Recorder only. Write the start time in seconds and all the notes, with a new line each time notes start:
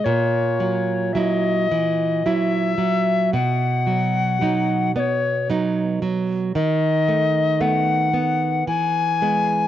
0.04 C#5
1.13 E5
1.18 D#5
2.26 E5
3.33 F#5
4.96 C#5 D5
6.55 D#5
7.61 F#5
8.68 G#5